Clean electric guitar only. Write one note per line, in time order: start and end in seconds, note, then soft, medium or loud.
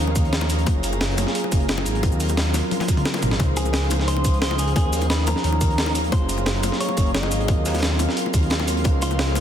3.57 3.88 G#4 medium
4.08 4.41 C5 loud
4.42 4.58 C5 loud
4.59 4.75 G#4 medium
4.76 5.08 G#4 medium
5.10 5.27 B4 loud
5.27 5.91 A#4 loud
6.12 6.80 C5 loud
6.80 7.12 C#5 loud
7.15 7.79 D#5 loud
9.02 9.40 F4 medium